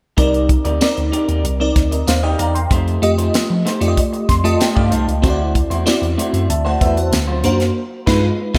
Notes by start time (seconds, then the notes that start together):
0.17 C2 C4 D#4 G4 A#4 D5, kick, closed hi-hat
0.34 closed hi-hat
0.49 muted clean electric guitar stroke, kick, closed hi-hat
0.65 D2 D#4 G4 A#4 D5, closed hi-hat
0.81 C4 D#4 A#4 D5, muted clean electric guitar stroke, snare, closed hi-hat, tambourine
0.97 D2, muted clean electric guitar stroke, closed hi-hat
1.12 D#4 G4 A#4 D5, closed hi-hat
1.28 D#2 D#4 G4 A#4 D5, closed hi-hat
1.44 C2, muted clean electric guitar stroke, closed hi-hat
1.60 C4 D#4 A#4 D5, muted clean electric guitar stroke
1.76 D2, kick, snare, closed hi-hat
1.91 A#4 D#5, muted clean electric guitar stroke, closed hi-hat
2.07 D#2 C5 F5, muted clean electric guitar stroke, snare, closed hi-hat, tambourine
2.23 D#4 G4 A#4 D5 D#5 G5
2.39 E2 D#4 G4 A#4 D5 F5 A#5, closed hi-hat
2.55 G5 C6, muted clean electric guitar stroke, closed hi-hat
2.71 F2 A3 D#4 G4 C5, kick, closed hi-hat
2.88 closed hi-hat
3.02 F2 A3 F4 G4 D#5, muted clean electric guitar stroke, closed hi-hat
3.18 A3 D#4 G4 C5, closed hi-hat
3.34 F3, muted clean electric guitar stroke, snare, closed hi-hat, tambourine
3.50 F3, muted clean electric guitar stroke
3.65 A3 D#4 G4 C5, snare, closed hi-hat
3.80 F2 A3 D#4 F4 G4 C5 D5, closed hi-hat
3.88 D#5
3.97 muted clean electric guitar stroke, kick, closed hi-hat
4.13 muted clean electric guitar stroke, closed hi-hat
4.29 F2 C6, kick, snare, closed hi-hat
4.44 A3 F4 G4 D#5 A5, muted clean electric guitar stroke, closed hi-hat
4.60 G5, muted clean electric guitar stroke, snare, closed hi-hat, tambourine
4.76 G2 A3 D#4 G4 D5 F5, kick
4.91 C2 A3 D#4 G4 C5 D#5, closed hi-hat
5.07 C#2, muted clean electric guitar stroke, closed hi-hat
5.22 D2 A3 C4 E4 F#4 C5, kick, closed hi-hat
5.30 D5
5.55 muted clean electric guitar stroke, kick, closed hi-hat
5.70 E2 A3 E4 F#4 C5, closed hi-hat
5.86 C4 E4 F#4 D5, muted clean electric guitar stroke, snare, closed hi-hat, tambourine
6.02 E2, muted clean electric guitar stroke, closed hi-hat
6.18 A3 E4 F#4 C5, closed hi-hat
6.33 F#2 A3 E4 F#4 C5, closed hi-hat
6.49 D2 E5 A5, muted clean electric guitar stroke, closed hi-hat
6.65 A3 E4 F#4 C5 F#5
6.80 E2 A3 E4 F#4 B4 C5 E5, kick, closed hi-hat
6.96 F#4 C5, muted clean electric guitar stroke, closed hi-hat
7.12 D2, muted clean electric guitar stroke, snare, closed hi-hat, tambourine
7.27 F#3 C4 F4 C5
7.43 F#2 F#3 A#3 C4 D4 F4 F#4 A#4 C5, closed hi-hat
7.60 muted clean electric guitar stroke, snare, closed hi-hat
8.06 G2 G#3 D#4 F4 B4, kick, snare, crash
8.54 G2 G#3 D#4 F4, kick